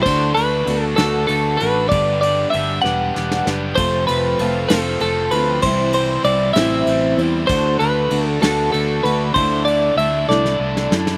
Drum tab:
CC |x-----------|------------|x-----------|------------|
RD |--x-x-x-x-x-|x-x-x-------|--x-x-x-x-x-|x-x-x-x-x-x-|
SD |------o-----|------o-ooo-|------o-----|------o-----|
BD |o-----------|o-----------|o-----------|o-----------|

CC |x-----------|------------|
RD |--x-x-x-x-x-|x-x-x-------|
SD |------o-----|------oo-ooo|
BD |o-----------|o-----------|